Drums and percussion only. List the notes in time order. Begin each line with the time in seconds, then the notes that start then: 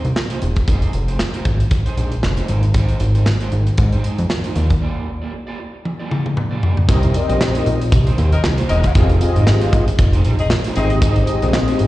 0.05 closed hi-hat
0.16 snare, clap
0.30 closed hi-hat
0.42 closed hi-hat
0.56 kick, closed hi-hat
0.68 kick, closed hi-hat
0.82 closed hi-hat
0.93 closed hi-hat
1.08 closed hi-hat
1.19 snare, clap
1.34 closed hi-hat
1.45 kick, closed hi-hat
1.60 closed hi-hat
1.71 kick, closed hi-hat
1.86 closed hi-hat
1.98 closed hi-hat
2.12 closed hi-hat
2.23 snare, clap
2.37 closed hi-hat
2.48 closed hi-hat
2.63 closed hi-hat
2.74 kick, closed hi-hat
2.89 closed hi-hat
3.00 closed hi-hat
3.15 closed hi-hat
3.26 snare, clap
3.40 closed hi-hat
3.52 closed hi-hat
3.67 closed hi-hat
3.78 kick, closed hi-hat
3.93 closed hi-hat
4.04 closed hi-hat
4.18 closed hi-hat
4.30 snare, clap
4.44 closed hi-hat
4.56 closed hi-hat
4.70 kick, closed hi-hat
5.85 high tom
6.11 mid tom
6.26 mid tom
6.37 mid tom
6.63 floor tom
6.77 floor tom
6.89 kick, closed hi-hat
7.03 closed hi-hat
7.14 closed hi-hat
7.30 closed hi-hat
7.41 snare, clap
7.55 closed hi-hat
7.66 closed hi-hat
7.81 closed hi-hat
7.92 kick, closed hi-hat
8.07 closed hi-hat
8.18 closed hi-hat
8.32 closed hi-hat
8.44 snare, clap
8.58 closed hi-hat
8.69 closed hi-hat
8.84 kick, closed hi-hat
8.95 kick, closed hi-hat
9.10 closed hi-hat
9.21 closed hi-hat
9.36 closed hi-hat
9.47 snare, clap
9.61 closed hi-hat
9.73 kick, closed hi-hat
9.88 closed hi-hat
9.99 kick, closed hi-hat
10.13 closed hi-hat
10.25 closed hi-hat
10.39 closed hi-hat
10.50 snare, clap
10.64 closed hi-hat
10.76 closed hi-hat
10.90 closed hi-hat
11.02 kick, closed hi-hat
11.16 closed hi-hat
11.27 closed hi-hat
11.42 closed hi-hat
11.53 snare, clap
11.68 closed hi-hat
11.79 closed hi-hat